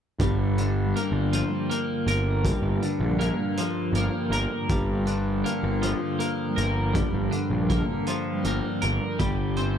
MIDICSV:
0, 0, Header, 1, 5, 480
1, 0, Start_track
1, 0, Key_signature, -2, "minor"
1, 0, Tempo, 750939
1, 123, Time_signature, 6, 3, 24, 8
1, 6252, End_track
2, 0, Start_track
2, 0, Title_t, "Clean electric guitar"
2, 0, Program_c, 0, 27
2, 134, Note_on_c, 0, 43, 68
2, 374, Note_on_c, 0, 50, 56
2, 612, Note_on_c, 0, 58, 53
2, 848, Note_on_c, 0, 53, 58
2, 1082, Note_off_c, 0, 58, 0
2, 1085, Note_on_c, 0, 58, 57
2, 1330, Note_on_c, 0, 70, 64
2, 1565, Note_off_c, 0, 43, 0
2, 1566, Note_off_c, 0, 50, 0
2, 1568, Note_on_c, 0, 43, 67
2, 1805, Note_on_c, 0, 50, 51
2, 2037, Note_off_c, 0, 58, 0
2, 2040, Note_on_c, 0, 58, 58
2, 2284, Note_off_c, 0, 53, 0
2, 2287, Note_on_c, 0, 53, 56
2, 2525, Note_off_c, 0, 58, 0
2, 2528, Note_on_c, 0, 58, 61
2, 2760, Note_off_c, 0, 70, 0
2, 2762, Note_on_c, 0, 70, 64
2, 3002, Note_off_c, 0, 50, 0
2, 3003, Note_off_c, 0, 43, 0
2, 3005, Note_on_c, 0, 43, 64
2, 3241, Note_on_c, 0, 50, 55
2, 3476, Note_off_c, 0, 58, 0
2, 3479, Note_on_c, 0, 58, 57
2, 3718, Note_off_c, 0, 53, 0
2, 3720, Note_on_c, 0, 53, 60
2, 3948, Note_off_c, 0, 58, 0
2, 3956, Note_on_c, 0, 58, 58
2, 3962, Note_off_c, 0, 70, 0
2, 4195, Note_on_c, 0, 70, 62
2, 4430, Note_off_c, 0, 43, 0
2, 4432, Note_on_c, 0, 43, 69
2, 4441, Note_off_c, 0, 50, 0
2, 4673, Note_on_c, 0, 50, 56
2, 4912, Note_off_c, 0, 58, 0
2, 4920, Note_on_c, 0, 58, 57
2, 5159, Note_off_c, 0, 53, 0
2, 5161, Note_on_c, 0, 53, 62
2, 5394, Note_off_c, 0, 58, 0
2, 5399, Note_off_c, 0, 70, 0
2, 5401, Note_on_c, 0, 58, 57
2, 5637, Note_on_c, 0, 70, 65
2, 5873, Note_off_c, 0, 53, 0
2, 5876, Note_on_c, 0, 55, 68
2, 5879, Note_off_c, 0, 50, 0
2, 5880, Note_off_c, 0, 70, 0
2, 5883, Note_off_c, 0, 58, 0
2, 6118, Note_on_c, 0, 60, 56
2, 6252, Note_off_c, 0, 43, 0
2, 6252, Note_off_c, 0, 55, 0
2, 6252, Note_off_c, 0, 60, 0
2, 6252, End_track
3, 0, Start_track
3, 0, Title_t, "Tanpura"
3, 0, Program_c, 1, 104
3, 133, Note_on_c, 1, 50, 51
3, 544, Note_on_c, 1, 55, 52
3, 940, Note_off_c, 1, 55, 0
3, 940, Note_on_c, 1, 55, 54
3, 1335, Note_on_c, 1, 43, 57
3, 1726, Note_off_c, 1, 50, 0
3, 1729, Note_on_c, 1, 50, 60
3, 2148, Note_off_c, 1, 55, 0
3, 2148, Note_on_c, 1, 55, 54
3, 2541, Note_off_c, 1, 55, 0
3, 2541, Note_on_c, 1, 55, 57
3, 2945, Note_off_c, 1, 43, 0
3, 2947, Note_on_c, 1, 43, 54
3, 3367, Note_off_c, 1, 50, 0
3, 3369, Note_on_c, 1, 50, 53
3, 3757, Note_off_c, 1, 55, 0
3, 3757, Note_on_c, 1, 55, 53
3, 4146, Note_off_c, 1, 55, 0
3, 4146, Note_on_c, 1, 55, 54
3, 4527, Note_off_c, 1, 43, 0
3, 4529, Note_on_c, 1, 43, 52
3, 4923, Note_off_c, 1, 50, 0
3, 4925, Note_on_c, 1, 50, 50
3, 5323, Note_off_c, 1, 55, 0
3, 5323, Note_on_c, 1, 55, 56
3, 5733, Note_off_c, 1, 55, 0
3, 5733, Note_on_c, 1, 55, 56
3, 6131, Note_off_c, 1, 43, 0
3, 6134, Note_on_c, 1, 43, 54
3, 6252, Note_off_c, 1, 43, 0
3, 6252, Note_off_c, 1, 50, 0
3, 6252, Note_off_c, 1, 55, 0
3, 6252, End_track
4, 0, Start_track
4, 0, Title_t, "Picked electric bass"
4, 0, Program_c, 2, 34
4, 123, Note_on_c, 2, 31, 77
4, 589, Note_off_c, 2, 31, 0
4, 713, Note_on_c, 2, 31, 76
4, 903, Note_off_c, 2, 31, 0
4, 1320, Note_on_c, 2, 31, 66
4, 1600, Note_off_c, 2, 31, 0
4, 1674, Note_on_c, 2, 31, 72
4, 1770, Note_off_c, 2, 31, 0
4, 1917, Note_on_c, 2, 34, 69
4, 2105, Note_off_c, 2, 34, 0
4, 2509, Note_on_c, 2, 31, 76
4, 2607, Note_off_c, 2, 31, 0
4, 2749, Note_on_c, 2, 31, 71
4, 2846, Note_off_c, 2, 31, 0
4, 3000, Note_on_c, 2, 31, 86
4, 3467, Note_off_c, 2, 31, 0
4, 3600, Note_on_c, 2, 31, 75
4, 3787, Note_off_c, 2, 31, 0
4, 4204, Note_on_c, 2, 31, 77
4, 4483, Note_off_c, 2, 31, 0
4, 4561, Note_on_c, 2, 31, 76
4, 4655, Note_off_c, 2, 31, 0
4, 4795, Note_on_c, 2, 34, 73
4, 4984, Note_off_c, 2, 34, 0
4, 5398, Note_on_c, 2, 31, 74
4, 5493, Note_off_c, 2, 31, 0
4, 5645, Note_on_c, 2, 31, 73
4, 5738, Note_off_c, 2, 31, 0
4, 5876, Note_on_c, 2, 31, 84
4, 6252, Note_off_c, 2, 31, 0
4, 6252, End_track
5, 0, Start_track
5, 0, Title_t, "Drums"
5, 127, Note_on_c, 9, 36, 96
5, 129, Note_on_c, 9, 42, 72
5, 191, Note_off_c, 9, 36, 0
5, 193, Note_off_c, 9, 42, 0
5, 370, Note_on_c, 9, 42, 55
5, 434, Note_off_c, 9, 42, 0
5, 616, Note_on_c, 9, 42, 54
5, 679, Note_off_c, 9, 42, 0
5, 850, Note_on_c, 9, 42, 79
5, 914, Note_off_c, 9, 42, 0
5, 1092, Note_on_c, 9, 42, 54
5, 1156, Note_off_c, 9, 42, 0
5, 1326, Note_on_c, 9, 42, 57
5, 1390, Note_off_c, 9, 42, 0
5, 1564, Note_on_c, 9, 36, 95
5, 1566, Note_on_c, 9, 42, 81
5, 1628, Note_off_c, 9, 36, 0
5, 1630, Note_off_c, 9, 42, 0
5, 1806, Note_on_c, 9, 42, 55
5, 1870, Note_off_c, 9, 42, 0
5, 2048, Note_on_c, 9, 42, 52
5, 2112, Note_off_c, 9, 42, 0
5, 2284, Note_on_c, 9, 42, 73
5, 2348, Note_off_c, 9, 42, 0
5, 2523, Note_on_c, 9, 42, 50
5, 2587, Note_off_c, 9, 42, 0
5, 2764, Note_on_c, 9, 42, 50
5, 2828, Note_off_c, 9, 42, 0
5, 2999, Note_on_c, 9, 42, 65
5, 3002, Note_on_c, 9, 36, 92
5, 3063, Note_off_c, 9, 42, 0
5, 3066, Note_off_c, 9, 36, 0
5, 3239, Note_on_c, 9, 42, 50
5, 3303, Note_off_c, 9, 42, 0
5, 3488, Note_on_c, 9, 42, 49
5, 3552, Note_off_c, 9, 42, 0
5, 3724, Note_on_c, 9, 42, 70
5, 3788, Note_off_c, 9, 42, 0
5, 3962, Note_on_c, 9, 42, 54
5, 4026, Note_off_c, 9, 42, 0
5, 4203, Note_on_c, 9, 42, 54
5, 4267, Note_off_c, 9, 42, 0
5, 4441, Note_on_c, 9, 42, 71
5, 4442, Note_on_c, 9, 36, 97
5, 4505, Note_off_c, 9, 42, 0
5, 4506, Note_off_c, 9, 36, 0
5, 4681, Note_on_c, 9, 42, 54
5, 4745, Note_off_c, 9, 42, 0
5, 4921, Note_on_c, 9, 36, 71
5, 4921, Note_on_c, 9, 42, 59
5, 4985, Note_off_c, 9, 36, 0
5, 4985, Note_off_c, 9, 42, 0
5, 5155, Note_on_c, 9, 42, 83
5, 5219, Note_off_c, 9, 42, 0
5, 5398, Note_on_c, 9, 42, 58
5, 5462, Note_off_c, 9, 42, 0
5, 5635, Note_on_c, 9, 42, 53
5, 5699, Note_off_c, 9, 42, 0
5, 5877, Note_on_c, 9, 42, 74
5, 5879, Note_on_c, 9, 36, 92
5, 5941, Note_off_c, 9, 42, 0
5, 5943, Note_off_c, 9, 36, 0
5, 6114, Note_on_c, 9, 42, 54
5, 6178, Note_off_c, 9, 42, 0
5, 6252, End_track
0, 0, End_of_file